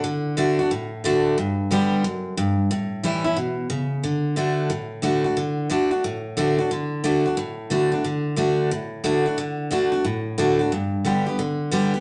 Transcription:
0.04 D3
0.37 D3 A3 D4 F#4
0.59 D4 F#4
0.71 A2
1.04 D3 A3 D4 F#4
1.38 G2
1.71 D3 G3 B3 G4
2.04 F#2
2.37 G2
2.71 A2
3.03 E3 G3 C#4 E4
3.24 C#4 E4
3.37 B2
3.70 C#3
4.03 D3
4.36 D3 A3 D4 F#4
4.70 A2
5.02 D3 A3 D4 F#4
5.24 D4 F#4
5.37 D3
5.70 D3 A3 D4 F#4
5.91 D4 F#4
6.04 A2
6.37 D3 A3 D4 F#4
6.58 D4 F#4
6.71 D3
7.04 D3 A3 D4 F#4
7.26 D4 F#4
7.37 A2
7.70 D3 A3 D4 F#4
7.92 D4 F#4
8.04 D3
8.36 D3 A3 D4 F#4
8.71 A2
9.04 D3 A3 D4 F#4
9.26 D4 F#4
9.38 D3
9.71 D3 A3 D4 F#4
9.92 D4 F#4
10.05 A2
10.38 D3 A3 D4 F#4
10.59 D4 F#4
10.72 G2
11.05 D3 G3 B3 G4
11.26 B3 G4
11.39 D3
11.71 D3 G3 B3 G4
11.94 B3 G4

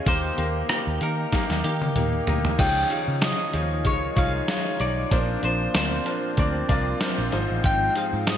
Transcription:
Already playing: G#3 C#4
0.06 D#2 D#3 A#3 D#4 G4 A#4 C5, kick, closed hi-hat
0.37 D#2 A#3 D#4 G4 A#4, closed hi-hat
0.69 A#3 D#4 G4 A#4, cross-stick, closed hi-hat
0.87 D#2
1.01 D#3 A#3 D#4 G4 A#4, closed hi-hat
1.32 A#3 D#4 G4 A#4, kick, snare, closed hi-hat
1.50 D#2, snare
1.64 D#3 A#3 D#4 G4 A#4, closed hi-hat
1.82 high tom
1.95 D#2 A#3 D#4 G4 A#4, closed hi-hat, mid tom
2.27 D2 A#3 D#4 G4 A#4, closed hi-hat, floor tom
2.45 floor tom
2.58 C#2 C#3 D#3 F3 D#4 F4 G#4 C#5 G5, kick, closed hi-hat, crash
2.90 F3 D#4 F4 G#4 C#5 F5, closed hi-hat
3.08 C#3
3.21 G#3 D#4 F4 G#4 C#5 D#5, snare, closed hi-hat
3.53 D#2 F3 D#4 F4 G#4 C#5, closed hi-hat
3.84 C#2 G#3 D#4 F4 G#4 C#5, kick, closed hi-hat
4.16 C2 F3 D#4 F4 G#4 C#5 F5, kick, closed hi-hat
4.48 G#3 D#4 F4 G#4 C#5, snare, closed hi-hat
4.79 B1 D#4 F4 G#4 C#5 D5, closed hi-hat
5.11 A#1 A#2 F3 A#3 C4 D4 F4 A#4 C5, kick, closed hi-hat
5.43 A#1 F3 D4 F4 A#4 C5, closed hi-hat
5.74 D2 C4 D4 F4 A#4 C5, snare, closed hi-hat
6.06 F3 D4 F4 A#4 C5, closed hi-hat
6.37 D2 C4 D4 F4 A#4 C5 D5, kick, closed hi-hat
6.69 C2 F3 D4 F4 A#4 D5, kick, closed hi-hat
7.00 C4 D4 F4 A#4 C5, snare, closed hi-hat
7.18 A#1
7.32 G#1 G#2 F3 G#3 D#4 F4 G#4 C5, closed hi-hat
7.50 A1
7.64 G#1 F3 D#4 G5, kick, closed hi-hat
7.95 F3 D#4 F4 G#4 C5 F5, closed hi-hat
8.13 G#2
8.27 C4 D#4 F4 G#4 C5 D#5, snare, closed hi-hat

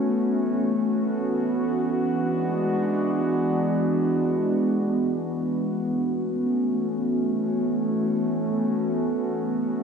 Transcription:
Already playing: E3 A3 B3 C#4 F#4
2.02 G#3 D4
5.96 A3 C#4

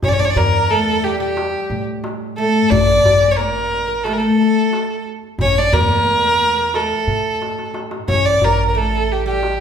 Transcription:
0.02 A1 C#4 C#5, darbuka dum
0.09 C#4 D5
0.13 C#5
0.19 D4 D5
0.25 C#5
0.30 D5
0.36 E2 A#4, darbuka dum
0.70 A3 A4, darbuka ka
1.04 G3 G4, darbuka ka
1.20 G3 G4, darbuka ka
1.37 darbuka tek
1.70 A2, darbuka ka
2.04 darbuka tek
2.38 A3 A4, darbuka ka
2.55 darbuka ka
2.70 A1 D4 D5, darbuka dum
3.04 A1, darbuka dum
3.17 D4
3.22 C#4
3.31 C#5
3.36 A#3 A#4, darbuka ka
3.72 darbuka ka
3.88 A#3, darbuka ka
4.03 A3 A4, darbuka tek
4.13 A#4
4.18 A3 A4
4.40 darbuka ka
4.73 darbuka tek
5.06 darbuka ka
5.23 darbuka ka
5.38 A1 C#4 C#5, darbuka dum
5.58 D4 D5
5.72 E2 A#3 A#4, darbuka dum
5.81 A#3
5.88 A#3
5.95 A#3
6.03 A#3, darbuka ka
6.10 A#3
6.19 A#3
6.27 A#3
6.34 A#3
6.40 A#3, darbuka ka
6.49 A#3
6.57 A#3, darbuka ka
6.74 A3 A4, darbuka tek
7.07 A2, darbuka ka
7.25 darbuka ka
7.42 darbuka tek
7.59 darbuka ka
7.74 darbuka tek
7.91 darbuka ka
8.08 A1 C#4 C#5, darbuka dum
8.25 D5
8.41 A1 A#4, darbuka dum
8.68 A#4
8.75 A3 A4, darbuka ka
9.09 G4, darbuka ka
9.26 G3 G4, darbuka ka
9.43 darbuka tek

